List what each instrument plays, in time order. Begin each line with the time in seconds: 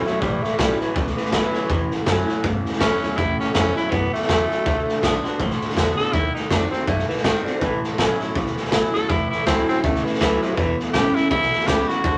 Already playing: steel-string acoustic guitar E2
0.06 clean electric guitar A2 F#3, tenor saxophone A3, steel-string acoustic guitar C#4 E4, snare
0.21 upright bass A1, clean electric guitar A2 E3, steel-string acoustic guitar A2, tenor saxophone G3, kick, snare
0.43 tenor saxophone A3, muted upright bass stroke, snare
0.58 upright bass B1, clean electric guitar A2 F#3, steel-string acoustic guitar E3 A3 C#4 E4, tenor saxophone G3, kick, snare, hi-hat pedal
0.79 clean electric guitar A2 F#3, tenor saxophone E3, steel-string acoustic guitar C#4 E4, muted upright bass stroke, snare
0.94 upright bass C#2, steel-string acoustic guitar E2, clean electric guitar A2 E3, kick, snare
1.07 snare
1.16 tenor saxophone E3, snare
1.25 snare
1.32 upright bass D2, clean electric guitar A2 F#3, tenor saxophone E3, steel-string acoustic guitar E3 A3 C#4 E4, kick, snare, hi-hat pedal
1.53 clean electric guitar A2 F#3, steel-string acoustic guitar C#4 E4, muted upright bass stroke, snare
1.68 upright bass E2, clean electric guitar A2 E3, steel-string acoustic guitar A2, kick, snare
1.91 snare
2.06 upright bass F#2, clean electric guitar A2 F#3, steel-string acoustic guitar E3 A3 C#4 E4, kick, snare, hi-hat pedal
2.27 clean electric guitar A2 F#3, steel-string acoustic guitar C#4 E4, snare
2.42 steel-string acoustic guitar E2, upright bass G2, clean electric guitar A2 E3, kick, snare
2.65 muted upright bass stroke, snare
2.73 snare
2.80 clean electric guitar A2 F#3, upright bass A2, steel-string acoustic guitar E3 A3 C#4 E4, tenor saxophone C#4, kick, snare, hi-hat pedal
3.01 clean electric guitar A2 F#3, steel-string acoustic guitar C#4 E4, muted upright bass stroke, snare
3.17 upright bass E2, clean electric guitar A2 E3, steel-string acoustic guitar A2, tenor saxophone E4, kick, snare
3.40 tenor saxophone C#4, snare
3.54 upright bass F2, steel-string acoustic guitar E3 A3 C#4 E4, clean electric guitar F#3, tenor saxophone C#4, kick, snare, hi-hat pedal
3.75 clean electric guitar A2 F#3, steel-string acoustic guitar C#4 E4, tenor saxophone E4, snare
3.91 upright bass F#2, clean electric guitar A2 E3, steel-string acoustic guitar B2, tenor saxophone B3, kick, snare
4.14 tenor saxophone A3, snare
4.22 snare
4.27 upright bass E2, clean electric guitar A2 F#3, steel-string acoustic guitar C#3, kick, snare, hi-hat pedal
4.50 clean electric guitar A2 F#3, snare
4.65 upright bass D2, clean electric guitar D3 A3, steel-string acoustic guitar D3, kick, snare
4.89 muted upright bass stroke, snare
5.02 upright bass B1, clean electric guitar D3 B3, steel-string acoustic guitar D3 A3 D4 F#4, kick, snare, hi-hat pedal
5.24 clean electric guitar D3 B3, steel-string acoustic guitar D4 F#4, muted upright bass stroke, snare
5.39 upright bass A1, steel-string acoustic guitar A2, clean electric guitar D3 A3, kick, snare
5.51 snare
5.61 muted upright bass stroke, snare
5.69 snare
5.76 upright bass E2, clean electric guitar D3 B3, steel-string acoustic guitar D3 A3 D4 F#4, kick, snare, hi-hat pedal
5.97 clean electric guitar D3 B3, steel-string acoustic guitar D4 F#4, tenor saxophone A4, snare
6.13 upright bass D#2, clean electric guitar D#3 A#3, steel-string acoustic guitar D#3, tenor saxophone E4, kick, snare
6.35 tenor saxophone D#4, snare
6.50 upright bass F2, clean electric guitar D#3 C4, steel-string acoustic guitar D#3 A3 C4 F#4, tenor saxophone D4, kick, snare, hi-hat pedal
6.72 clean electric guitar D#3 C4, tenor saxophone C4, steel-string acoustic guitar C4 F#4, snare
6.87 upright bass F#2, clean electric guitar D#3 A#3, tenor saxophone A3, steel-string acoustic guitar A3, kick, snare
6.99 snare
7.09 tenor saxophone E3, snare
7.17 snare
7.24 upright bass G#2, tenor saxophone D#3, clean electric guitar D#3 C4, steel-string acoustic guitar D#3 A3 C4 F#4, kick, snare, hi-hat pedal
7.45 tenor saxophone D3, clean electric guitar D#3 C4, steel-string acoustic guitar C4 F#4, muted upright bass stroke, snare
7.60 clean electric guitar A2 E3, upright bass A2, steel-string acoustic guitar A2, tenor saxophone E3, kick, snare
7.84 muted upright bass stroke, snare
7.97 clean electric guitar A2 F#3, upright bass B2, steel-string acoustic guitar E3 A3 C#4 E4, kick, snare, hi-hat pedal
8.19 clean electric guitar A2 F#3, steel-string acoustic guitar C#4 E4, muted upright bass stroke, snare
8.35 steel-string acoustic guitar E2, clean electric guitar A2 E3, upright bass C#3, kick, snare
8.46 snare
8.57 muted upright bass stroke, snare
8.65 snare
8.72 upright bass A2, clean electric guitar A2 F#3, steel-string acoustic guitar E3 A3 C#4 E4, kick, snare, hi-hat pedal
8.94 clean electric guitar A2 F#3, steel-string acoustic guitar C#4 E4, tenor saxophone A4, muted upright bass stroke, snare
9.09 upright bass E2, clean electric guitar A2 E3, steel-string acoustic guitar A2, tenor saxophone E4, kick, snare
9.31 tenor saxophone E4, snare
9.46 upright bass C#2, clean electric guitar A2 F#3, steel-string acoustic guitar E3 A3 C#4 E4, tenor saxophone C4, kick, snare, hi-hat pedal
9.68 clean electric guitar A2 F#3, tenor saxophone C4, steel-string acoustic guitar C#4 E4, snare
9.83 upright bass D2, steel-string acoustic guitar E2, clean electric guitar A2 E3, tenor saxophone A3, kick, snare
9.95 snare
10.05 tenor saxophone E3, muted upright bass stroke, snare
10.14 snare
10.20 upright bass C#2, clean electric guitar A2 F#3, tenor saxophone E3, steel-string acoustic guitar E3 A3 C#4 E4, kick, snare, hi-hat pedal
10.42 clean electric guitar A2 F#3, tenor saxophone C3, steel-string acoustic guitar C#4 E4, snare
10.56 steel-string acoustic guitar E2, clean electric guitar E2 B2, upright bass E2, tenor saxophone E3, kick, snare
10.79 snare
10.93 upright bass G#1, clean electric guitar E2 C#3, steel-string acoustic guitar E3 G#3 B3 E4, tenor saxophone G4, kick, snare, hi-hat pedal
11.15 clean electric guitar E2 C#3, steel-string acoustic guitar B3 E4, tenor saxophone E4, muted upright bass stroke, snare
11.30 upright bass B1, clean electric guitar E2 B2, steel-string acoustic guitar B2, tenor saxophone E4, kick, snare
11.42 snare
11.53 muted upright bass stroke, snare
11.60 snare
11.67 upright bass C#2, clean electric guitar E2 C#3, steel-string acoustic guitar E3 G#3 B3 E4, tenor saxophone G4, kick, snare, hi-hat pedal
11.88 clean electric guitar E2 C#3, steel-string acoustic guitar B3 E4, tenor saxophone F#4, snare
12.04 upright bass D2, clean electric guitar D3 A3, steel-string acoustic guitar D3, kick, snare